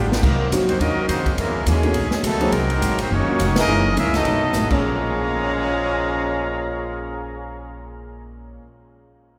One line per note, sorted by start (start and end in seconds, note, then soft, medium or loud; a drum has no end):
0.00 0.21 G#1 loud
0.00 0.20 B2 medium
0.00 0.20 D3 medium
0.00 0.21 F3 medium
0.00 0.12 G3 medium
0.00 0.20 G3 medium
0.00 0.19 G#3 medium
0.00 0.12 B3 medium
0.00 0.21 B3 medium
0.00 0.22 B3 medium
0.00 0.22 D4 medium
0.00 0.13 F4 medium
0.00 0.21 G4 medium
0.00 0.22 G4 medium
0.00 0.13 G#4 medium
0.12 snare medium
0.21 0.50 C2 medium
0.21 0.40 C3 soft
0.21 0.50 D#3 medium
0.21 0.50 F#3 medium
0.21 0.41 F#3 soft
0.21 0.51 F#3 medium
0.21 0.51 A#3 medium
0.21 0.41 A#3 medium
0.21 0.52 C4 medium
0.21 0.51 D#4 medium
0.21 0.42 D#4 medium
0.21 0.51 A#4 medium
0.21 kick medium
0.21 crash medium
0.51 0.79 F2 medium
0.51 0.69 C3 medium
0.51 0.69 F#3 medium
0.51 0.67 F#3 medium
0.51 0.67 A#3 medium
0.51 0.70 A#3 medium
0.51 0.67 C4 medium
0.51 0.67 D#4 medium
0.51 0.70 D#4 medium
0.51 0.67 F#4 medium
0.51 kick soft
0.51 hi-hat pedal medium
0.51 ride medium
0.68 0.79 D#3 medium
0.68 0.79 F#3 medium
0.68 0.78 A#3 medium
0.68 0.79 C4 medium
0.68 0.79 D#4 medium
0.68 0.78 F#4 medium
0.68 0.78 C5 medium
0.68 ride medium
0.79 0.95 D#2 medium
0.79 0.97 D#3 soft
0.79 0.95 F#3 medium
0.79 1.07 F#3 medium
0.79 0.98 A#3 medium
0.79 0.95 A#3 soft
0.79 1.09 A#3 medium
0.79 1.08 C#4 medium
0.79 0.95 C#4 medium
0.79 0.99 C#4 medium
0.79 1.09 D#4 medium
0.79 0.95 D#4 medium
0.79 0.95 F4 medium
0.79 1.06 F#4 medium
0.79 0.99 F#4 medium
0.79 1.08 A#4 medium
0.79 1.08 D#5 loud
0.79 kick soft
0.79 ride medium
0.96 muted upright bass stroke soft
1.07 1.36 F2 loud
1.07 1.35 C#3 medium
1.07 1.26 D#3 medium
1.07 1.35 F#3 medium
1.07 1.34 A#3 medium
1.07 1.27 A#3 medium
1.07 1.35 C4 medium
1.07 1.27 C#4 medium
1.07 1.34 D#4 medium
1.07 1.34 F#4 medium
1.07 1.34 C5 loud
1.07 kick soft
1.07 hi-hat pedal medium
1.07 ride medium
1.11 1.28 F#4 medium
1.26 kick medium
1.26 ride medium
1.36 1.55 F#2 medium
1.36 1.46 F#2 medium
1.36 1.65 C#3 medium
1.36 1.65 E3 medium
1.36 1.56 E3 soft
1.36 1.67 G#3 medium
1.36 1.65 A#3 loud
1.36 1.56 A#3 medium
1.36 1.65 C#4 medium
1.36 1.57 D#4 medium
1.36 1.66 E4 medium
1.36 1.66 A#4 medium
1.36 kick soft
1.36 ride medium
1.46 1.55 E2 medium
1.56 1.65 C#2 medium
1.66 1.94 D#2 medium
1.66 1.84 F#2 medium
1.66 2.20 C#3 medium
1.66 1.84 E3 medium
1.66 1.93 E3 medium
1.66 2.20 G#3 medium
1.66 1.92 A#3 medium
1.66 1.84 A#3 medium
1.66 2.19 C#4 medium
1.66 1.85 D#4 medium
1.66 2.20 G#4 medium
1.66 kick soft
1.66 hi-hat pedal medium
1.66 ride medium
1.83 1.93 A3 medium
1.83 1.93 B3 medium
1.83 1.93 C#4 medium
1.83 1.93 D#4 medium
1.83 1.94 F#4 medium
1.83 ride soft
1.94 2.10 B1 medium
1.94 2.12 B2 medium
1.94 2.13 F#3 medium
1.94 2.14 A3 medium
1.94 kick soft
1.94 ride medium
1.98 2.14 D#4 medium
2.11 muted upright bass stroke soft
2.11 snare medium
2.22 2.51 C#2 loud
2.22 2.40 B2 medium
2.22 2.51 D#3 medium
2.22 2.41 F#3 medium
2.22 2.52 F#3 medium
2.22 2.52 A3 medium
2.22 2.42 A3 medium
2.22 2.52 B3 medium
2.22 2.42 D#4 medium
2.22 2.52 D#4 medium
2.22 2.53 A4 loud
2.22 kick soft
2.22 hi-hat pedal medium
2.22 ride medium
2.41 2.51 F#3 medium
2.41 2.51 A#3 medium
2.41 2.51 C4 medium
2.41 2.51 D#4 medium
2.41 2.51 G#4 loud
2.41 ride medium
2.51 2.80 C2 medium
2.51 2.69 C3 soft
2.51 2.98 D#3 loud
2.51 2.70 F#3 soft
2.51 2.98 F#3 loud
2.51 2.98 F#3 medium
2.51 2.70 A#3 medium
2.51 2.98 A#3 medium
2.51 2.98 C4 loud
2.51 2.98 D#4 medium
2.51 2.71 D#4 medium
2.51 2.98 A#4 loud
2.51 kick soft
2.51 ride medium
2.70 ride medium
2.81 3.09 G#1 medium
2.81 2.99 C3 medium
2.81 2.99 F#3 medium
2.81 3.00 A#3 medium
2.81 3.00 D#4 medium
2.81 kick soft
2.81 hi-hat pedal medium
2.81 ride medium
2.98 3.10 D#3 medium
2.98 3.10 F#3 medium
2.98 3.11 A#3 medium
2.98 3.10 C4 medium
2.98 3.11 D#4 medium
2.98 3.11 F#4 medium
2.98 3.11 C5 loud
2.98 ride medium
3.10 3.25 F#1 medium
3.10 3.28 D#3 medium
3.10 3.56 F#3 loud
3.10 3.28 A#3 medium
3.10 3.56 A#3 loud
3.10 3.57 A#3 loud
3.10 3.56 C#4 medium
3.10 3.29 C#4 medium
3.10 3.57 D#4 medium
3.10 3.57 F#4 loud
3.10 3.30 F#4 medium
3.10 3.57 C#5 loud
3.10 kick soft
3.27 3.37 F#3 medium
3.27 3.37 A#3 medium
3.27 3.37 C#4 medium
3.27 3.37 D#4 medium
3.27 3.37 F4 medium
3.27 muted upright bass stroke soft
3.38 3.66 F1 loud
3.38 3.56 D#3 medium
3.38 3.57 A#3 medium
3.38 3.57 C#4 medium
3.38 3.57 F#4 medium
3.38 kick soft
3.38 hi-hat pedal medium
3.38 ride medium
3.56 3.94 E3 loud
3.56 3.94 A#3 medium
3.56 3.95 C#4 loud
3.56 3.94 D#4 loud
3.56 3.95 G#4 medium
3.56 3.95 A#4 loud
3.56 snare loud
3.56 ride medium
3.60 3.95 D#5 loud
3.67 3.95 F#1 medium
3.67 3.86 F#2 medium
3.67 3.86 E3 medium
3.67 3.83 G#3 medium
3.67 3.83 A#3 medium
3.67 3.87 A#3 soft
3.67 3.83 C#4 medium
3.67 3.83 D#4 medium
3.67 3.83 E4 medium
3.72 3.87 D#4 medium
3.96 4.24 C#2 medium
3.96 4.14 F#2 medium
3.96 4.15 E3 medium
3.96 4.11 G#3 medium
3.96 4.11 A#3 medium
3.96 4.13 A#3 medium
3.96 4.15 A#3 medium
3.96 4.11 C#4 medium
3.96 4.13 C#4 medium
3.96 4.15 C#4 medium
3.96 4.11 D#4 medium
3.96 4.15 D#4 medium
3.96 4.12 E4 medium
3.96 4.13 E4 medium
3.96 4.14 G#4 medium
3.96 4.15 A#4 medium
3.96 4.14 E5 loud
3.96 kick soft
3.96 hi-hat pedal medium
3.96 ride medium
4.14 4.67 F#3 medium
4.14 4.67 A3 medium
4.14 4.68 B3 medium
4.14 4.67 D#4 loud
4.14 4.68 F#4 medium
4.14 4.68 A4 medium
4.14 4.68 D#5 loud
4.14 snare medium
4.14 ride medium
4.24 4.52 B1 medium
4.24 4.42 B2 medium
4.24 4.43 F#3 soft
4.24 4.44 A3 soft
4.24 4.44 D#4 medium
4.24 kick soft
4.24 ride medium
4.53 4.69 A1 medium
4.53 4.70 B2 medium
4.53 4.65 F#3 medium
4.53 4.71 A3 medium
4.53 4.71 D#4 medium
4.53 snare medium
4.53 hi-hat pedal medium
4.66 7.86 A#2 loud
4.66 7.86 F3 loud
4.66 7.86 G#3 loud
4.66 8.59 A#3 medium
4.66 7.86 C#4 loud
4.70 8.57 A#1 medium
4.70 8.61 A#2 medium
4.70 8.61 A#3 medium
4.70 8.61 C#4 medium
4.70 8.62 C#4 medium
4.70 7.87 G#4 medium
4.70 8.62 G#4 medium
4.70 7.87 C#5 medium
4.70 8.62 C#5 medium
4.70 7.87 F5 medium
4.70 7.87 A#5 loud
4.70 kick medium
4.70 crash medium
4.78 8.65 G#4 medium